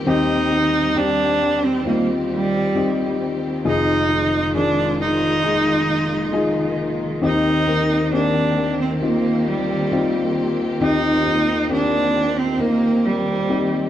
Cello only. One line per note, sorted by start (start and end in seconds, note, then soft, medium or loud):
0.08 0.99 D#4 loud
0.97 1.66 D4 loud
1.65 1.86 C4 medium
1.88 2.07 A#3 medium
2.33 3.17 G3 medium
3.67 4.51 D#4 loud
4.56 4.97 D4 medium
5.02 6.75 D#4 loud
7.24 8.09 D#4 loud
8.14 8.76 D4 medium
8.81 8.91 C4 medium
9.04 9.50 A#3 medium
9.48 10.37 G3 medium
10.82 11.67 D#4 loud
11.72 12.40 D4 loud
12.38 12.62 C4 medium
12.60 13.07 A#3 medium
13.05 13.90 G3 medium